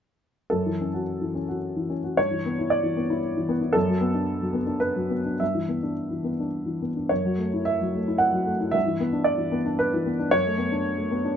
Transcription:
0.50 2.13 F#2 soft
0.50 2.16 A4 medium
0.66 0.88 E3 soft
0.81 1.02 C#4 soft
0.94 1.37 F#4 soft
1.21 1.43 E3 soft
1.35 1.57 C#4 soft
1.48 1.93 F#4 soft
1.76 1.98 E3 soft
1.90 2.12 C#4 soft
2.04 2.17 F#4 soft
2.17 3.72 G2 soft
2.17 2.71 C#5 medium
2.31 2.52 E3 soft
2.46 2.66 B3 soft
2.59 3.00 E4 soft
2.70 3.49 D5 medium
2.83 3.04 E3 soft
2.97 3.18 B3 soft
3.10 3.52 E4 soft
3.37 3.58 E3 soft
3.49 3.70 B3 soft
3.61 3.75 E4 soft
3.73 5.36 F#2 medium
3.73 4.80 A4 medium
3.88 4.09 F#3 soft
4.01 4.22 B3 soft
4.14 4.57 D4 soft
4.42 4.63 F#3 soft
4.53 4.76 B3 soft
4.66 5.13 D4 soft
4.80 5.39 B4 medium
4.96 5.19 F#3 soft
5.10 5.34 B3 soft
5.25 5.40 D4 soft
5.40 7.07 G2 soft
5.40 6.81 E5 medium
5.55 5.77 E3 soft
5.69 5.91 B3 soft
5.83 6.27 D4 soft
6.10 6.33 E3 soft
6.24 6.47 B3 soft
6.40 6.85 D4 soft
6.66 6.89 E3 soft
6.82 7.05 B3 soft
6.96 7.10 D4 soft
7.09 8.72 F#2 soft
7.09 7.67 C#5 medium
7.25 7.47 F#3 soft
7.38 7.61 A3 soft
7.53 7.98 E4 soft
7.65 8.21 E5 medium
7.81 8.03 F#3 soft
7.95 8.17 A3 soft
8.08 8.51 E4 soft
8.18 8.74 F#5 medium
8.32 8.55 F#3 soft
8.46 8.69 A3 soft
8.60 8.74 E4 soft
8.71 10.29 G2 soft
8.71 9.27 E5 medium
8.86 9.09 E3 soft
9.00 9.23 B3 soft
9.13 9.57 D4 soft
9.24 9.80 D5 medium
9.37 9.61 E3 soft
9.52 9.75 B3 soft
9.66 10.10 D4 soft
9.79 10.33 B4 medium
9.94 10.16 E3 soft
10.06 10.28 B3 soft
10.19 10.33 D4 soft
10.31 11.37 F#2 medium
10.31 11.37 C#5 medium
10.46 10.67 A3 soft
10.58 10.80 B3 soft
10.72 11.16 D4 soft
10.97 11.20 A3 soft
11.11 11.35 B3 soft
11.24 11.37 D4 soft

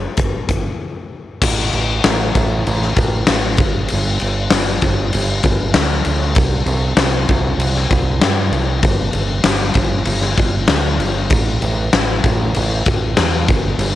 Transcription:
0.17 0.37 G1 medium
0.17 kick loud
0.17 closed hi-hat medium
0.49 0.68 G1 medium
0.49 kick medium
0.49 closed hi-hat medium
1.42 1.71 A1 loud
1.42 kick loud
1.42 crash loud
1.42 crash medium
1.73 2.02 A1 medium
1.73 crash medium
2.04 2.33 A1 medium
2.04 snare loud
2.04 crash medium
2.35 2.64 A1 medium
2.35 kick medium
2.35 crash medium
2.67 2.96 A1 medium
2.67 crash medium
2.82 snare soft
2.96 3.26 A1 medium
2.96 kick loud
2.96 crash medium
3.27 3.57 A1 medium
3.27 snare loud
3.27 crash medium
3.57 3.87 G1 medium
3.57 kick loud
3.57 crash medium
3.88 4.20 G1 loud
3.88 crash medium
4.20 4.50 G1 medium
4.20 crash medium
4.50 4.81 G1 medium
4.50 snare loud
4.50 crash medium
4.82 5.11 G1 medium
4.82 kick medium
4.82 crash medium
5.13 5.43 G1 medium
5.13 crash medium
5.43 5.73 G1 medium
5.43 kick medium
5.43 crash medium
5.74 6.04 D2 medium
5.74 snare loud
5.74 crash medium
6.05 6.35 D2 medium
6.05 crash medium
6.35 6.65 C2 loud
6.35 kick loud
6.35 crash medium
6.66 6.96 C2 medium
6.66 crash medium
6.96 7.26 C2 medium
6.96 snare loud
6.96 crash medium
7.29 7.57 C2 medium
7.29 kick medium
7.29 crash medium
7.58 7.88 C2 loud
7.58 crash medium
7.75 snare soft
7.91 8.20 C2 medium
7.91 kick medium
7.91 crash medium
8.20 8.50 G2 medium
8.20 snare loud
8.20 crash medium
8.51 8.81 C2 loud
8.51 crash medium
8.83 9.13 G1 loud
8.83 kick loud
8.83 crash medium
9.13 9.43 G1 medium
9.13 crash medium
9.44 9.74 G1 loud
9.44 snare loud
9.44 crash medium
9.74 10.05 G1 medium
9.74 kick medium
9.74 crash medium
10.05 10.36 G1 medium
10.05 crash medium
10.21 snare soft
10.37 10.67 G1 medium
10.37 kick medium
10.37 crash medium
10.68 10.98 D2 medium
10.68 snare loud
10.68 crash medium
10.98 11.28 G1 medium
10.98 crash medium
11.30 11.60 A1 loud
11.30 kick loud
11.30 crash medium
11.62 11.91 A1 medium
11.62 crash medium
11.93 12.22 A1 medium
11.93 snare loud
11.93 crash medium
12.24 12.53 A1 medium
12.24 kick medium
12.24 crash medium
12.55 12.85 A1 loud
12.55 crash medium
12.86 13.16 A1 medium
12.86 kick medium
12.86 crash medium
13.17 13.46 E2 medium
13.17 snare loud
13.17 crash medium
13.48 13.78 G1 medium
13.48 kick loud
13.48 crash medium
13.78 13.95 G1 loud
13.78 crash medium

